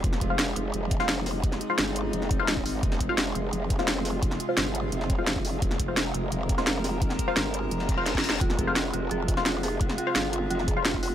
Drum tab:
HH |x-----x-----x-----x-----x-----x-----x-----o-----|x-----x-----x-----x-----x-----x-----x-----o-----|x-----x-----x-----x-----x-----x-----x-----o-----|x-----x-----x-----x-----x-----x-----x-----o-----|
SD |---o--------o--------------------o--o-----o-----|---o--------o--------------o--------o-----------|---o--------o--------------------o--o-----o-----|---o--------o--------------o--------o-----------|
BD |o-----o-----------------------o-----------------|o-----------------------------o--------o--------|o-----o-----------------------o-----------------|o-----------------------------o--------o--------|

HH |x-----x-----x-----x-----x-----x-----x-----o-----|x-----x-----x-----x-----x-----x-----x-----o-----|x-----x-----x-----x-----x-----x-----x-----o-----|x-----x-----x-----x-----x-----x-----x-----o-----|
SD |---o--------o--------------------o--o-----o-----|---o--------o--------------o--------o---o---o---|---o--------o--------------------o--o-----o-----|---o--------o--------------o--------o-----------|
BD |o-----o-----------------------o-----------------|o-----o-----------------------o--------o--------|o-----o-----------------------o-----------------|o-----------------------------o--------o--------|